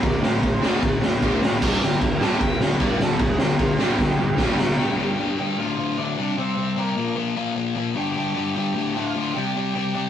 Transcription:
0.03 D1 D2 A2, kick, ride
0.07 D5
0.22 D1 D2 A2 F5, snare
0.42 D1 D2 A2, kick, ride
0.47 C5
0.61 D1 D2 A2 D3, snare
0.65 F5
0.82 D1 D2 A2, kick, ride
0.86 D5
1.02 D1 D2 A2 F5, snare
1.22 D1 D2 A2 D3 C5, kick, ride
1.42 D1 D2 A2 F5, snare
1.62 D1 G2 D3 G3 D5, kick, crash
1.82 D1 G2 D3 G4, snare
2.01 D1 G2 D3, kick, ride
2.21 D1 G2 D3 G3 A5, snare
2.41 D1 G2 D3 G5, kick, ride
2.60 D1 G2 D3 F5, snare
2.79 D1 G2 D3 G3 D5, kick, ride
3.00 D1 G2 D3 A4, snare
3.19 D1 G2 D3 G#4, kick, ride
3.39 D1 G2 D3 G4, snare
3.59 D1 G2 D3 F4, kick, ride
3.79 D1 G2 D3 G3 G4, snare
3.98 D1 G2 D3, kick, snare
4.19 D1 G2 D3
4.38 D1 G2 D3 G3, kick, snare
4.58 D1 G2 D3, snare
4.77 G2 D3 G3 G4 G5
4.98 G2 D3 G3
5.20 G2 D3 G3
5.39 G2 D3 G3 G4 G5
5.58 D2 A2 D3 F4 F5
5.78 D2 A2 D3
5.98 D2 A2 D3 D4 D5
6.17 C3 G3 C4
6.37 C3 G3 C4 C5
6.56 C3 G3 C4
6.76 C3 G3 A#3 C4 A#4
6.96 A#2 F3 A#3
7.16 A#2 F3 A#3
7.36 A#2 F3 A#3
7.55 A#2 F3 A#3
7.75 A#2 F3 A#3
7.95 G2 D3 G3 G5
7.99 G4
8.16 G2 D3 G3
8.35 G2 D3 G3
8.55 G2 D3 G3 G4 G5
8.75 D2 A2 D3
8.94 D2 A2 D3 F4 F5
9.15 D2 A2 D3
9.34 C3 G3 C4 G4 G5
9.55 C3 G3 C4
9.74 C3 G3 C4 G4 G5
9.95 C3 G3 C4

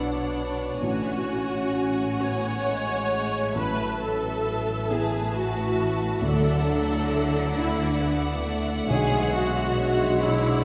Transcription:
Already playing: B1 B2 B3 D4 F#4 C#5 D5 F#5
0.14 B3
0.36 F#4
0.58 D4
0.80 A1 A2 C#4 F#4 F#5 G#5
1.04 G#3
1.28 F#4
1.51 C#4
1.75 F#4
1.98 G#3
2.20 B3 C#4 F#4 C#5
2.45 C#4
2.67 G#3 F#4
2.91 G#3
3.13 G#3 F#4
3.36 C#4
3.55 A1 A2 F#3 B4 E5 A5
3.80 A3
4.01 E4 A4
4.25 B3
4.47 E4
4.69 A3
4.90 E3 B3 E4 G#4
5.14 B3
5.36 E4 F#4
5.58 A3
5.80 E4
6.02 B3
6.22 D2 D3 F#3 A4 D5 F#5
6.47 D4
6.69 F#4
6.91 E4
7.14 F#4
7.36 D4
7.56 A3 D4 E4 F#4
7.80 E4
8.00 B3 F#4
8.25 D4
8.46 A3 F#4
8.68 E4
8.88 B1 B2 G#3 G#4 C#5
9.13 F#3
9.35 F#4
9.57 D4
9.81 F#4
10.03 F#3
10.23 D4 E4 F#4 D5
10.47 D4

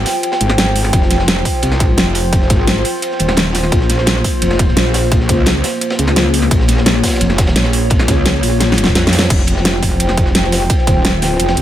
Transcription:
Already playing: F4 C5 G5
0.06 snare, open hi-hat, ride
0.23 closed hi-hat, ride
0.32 snare, ride
0.41 G#1, closed hi-hat
0.49 snare, ride
0.58 snare, closed hi-hat, ride
0.75 open hi-hat, ride
0.84 snare
0.93 F1, kick, closed hi-hat, ride
1.02 snare
1.11 snare, closed hi-hat, ride
1.19 snare
1.28 snare, closed hi-hat, ride
1.37 snare
1.45 kick, open hi-hat, ride
1.62 C2, closed hi-hat, ride
1.71 snare
1.80 kick, closed hi-hat, ride
1.97 F1, snare, closed hi-hat, ride
2.07 snare
2.15 open hi-hat, ride
2.33 kick, closed hi-hat, ride
2.42 snare
2.50 G#1, kick, snare, closed hi-hat, ride
2.67 snare, closed hi-hat, ride
2.85 open hi-hat, ride
3.02 closed hi-hat, ride
3.11 snare
3.19 D#1, closed hi-hat, ride
3.29 snare
3.37 snare, closed hi-hat, ride
3.55 snare, open hi-hat, ride
3.63 snare
3.72 A#1 A#3, kick, closed hi-hat, ride
3.81 snare
3.89 snare, closed hi-hat, ride
3.98 snare
4.06 snare, closed hi-hat, ride
4.16 snare
4.24 kick, open hi-hat, ride
4.42 F1, closed hi-hat, ride
4.51 snare
4.59 kick, closed hi-hat, ride
4.68 snare
4.77 A#1, snare, closed hi-hat, ride
4.85 snare
4.94 snare, open hi-hat, ride
5.03 snare
5.12 kick, closed hi-hat, ride
5.21 snare
5.29 C#2, kick, snare, closed hi-hat, ride
5.46 snare, closed hi-hat, ride
5.64 snare, open hi-hat, ride
5.81 closed hi-hat, ride
5.90 snare, ride
5.99 C#2, closed hi-hat
6.08 snare, ride
6.16 snare, closed hi-hat, ride
6.34 open hi-hat, ride
6.42 snare
6.51 A#1 C#5, kick, closed hi-hat, ride
6.60 snare
6.68 snare, closed hi-hat, ride
6.77 snare
6.86 snare, closed hi-hat, ride
6.95 snare
7.04 kick, snare, open hi-hat, ride
7.08 snare, ride
7.12 snare, ride
7.16 snare, ride
7.21 F1, closed hi-hat, ride
7.30 snare
7.38 kick, snare, closed hi-hat, ride
7.47 snare, ride
7.56 A#1, snare, closed hi-hat, ride
7.64 snare, ride
7.73 open hi-hat, ride
7.90 kick, closed hi-hat, ride
7.99 snare
8.08 C#2, kick, snare, closed hi-hat, ride
8.25 snare, closed hi-hat, ride
8.43 A#1, open hi-hat, ride
8.60 snare, closed hi-hat, ride
8.69 snare
8.72 snare
8.78 closed hi-hat, ride
8.84 kick, snare
8.87 snare
8.95 F2, snare, closed hi-hat, ride
9.04 snare
9.07 snare
9.12 snare, open hi-hat, ride
9.19 snare, ride
9.22 snare
9.30 F1 F4 C5 G5, kick, closed hi-hat, crash, ride
9.39 snare
9.47 closed hi-hat, ride
9.57 snare
9.65 snare, closed hi-hat, ride
9.74 snare
9.83 F1, kick, open hi-hat, ride
10.00 closed hi-hat, ride
10.09 snare
10.17 kick, closed hi-hat, ride
10.26 snare
10.35 F1, snare, closed hi-hat, ride
10.44 snare
10.52 snare, open hi-hat, ride
10.61 snare
10.70 kick, closed hi-hat, ride
10.78 snare
10.87 D#1, kick, snare, closed hi-hat, ride
11.05 snare, closed hi-hat, ride
11.22 snare, open hi-hat, ride
11.40 F1, closed hi-hat, ride
11.48 snare, ride
11.57 C2, closed hi-hat

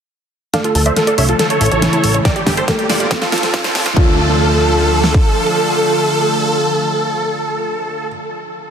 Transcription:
0.54 D3 F3 A3 D4 F4 A4 D5 F5, snare, closed hi-hat, riser
0.64 F4 A4, closed hi-hat
0.75 D2 D3 F3 A3 F4 A4, open hi-hat
0.86 C5 D5 E5, closed hi-hat
0.96 D3 F3 A3 F4 A4 F5, snare, closed hi-hat
1.07 A4 D5, closed hi-hat
1.18 C2 D3 F3 A3 D4 F4 C#5 E5, open hi-hat
1.29 F4 A4, closed hi-hat
1.39 C#3 E3 A3 E4 A4, snare, closed hi-hat
1.50 C#3 E3 A3 E4 A4 C#5, closed hi-hat
1.61 A1 C#3 E3 A3 E4 E5, open hi-hat
1.66 closed hi-hat
1.71 A1 C#3 E3 A3 E4 C#5, closed hi-hat
1.82 C#3 E3 A3 C#4 E4, snare, closed hi-hat
1.93 E4, closed hi-hat
2.04 A1 A4, open hi-hat
2.14 C#3 E3 A3 E4 C#5, closed hi-hat
2.25 D3 G3 A#3 G4 A#4 D5 G5, kick, snare, closed hi-hat
2.36 G4 D5, closed hi-hat
2.46 G1 D3 G3 A#3 D4 G4, kick, snare, open hi-hat
2.57 G4 A4 C5, closed hi-hat
2.68 D3 G3 A3 A#3 G4 A4 A#4, kick, snare, closed hi-hat
2.79 G4 D5, closed hi-hat
2.89 F1 D3 G3 A#3 F4 G4 D5 G5, snare, open hi-hat
3.00 F4 D5, closed hi-hat
3.11 C3 F3 A3 C4 F4, kick, snare, closed hi-hat
3.21 C3 F3 A3 F4 A4, snare, closed hi-hat
3.32 F1 C3 F3 A3 F4 A4, snare, open hi-hat
3.38 closed hi-hat
3.43 F1 C3 F3 A3 F4 C5, snare, closed hi-hat
3.54 C3 F3 A3 F4 F5, kick, snare, closed hi-hat
3.64 C5, snare, closed hi-hat
3.75 F1 C4, snare, open hi-hat
3.86 C3 F3 A3 F4, snare, closed hi-hat
3.96 D2 D3 F3 A3 D4 F4 A4, kick
5.04 snare
5.14 kick

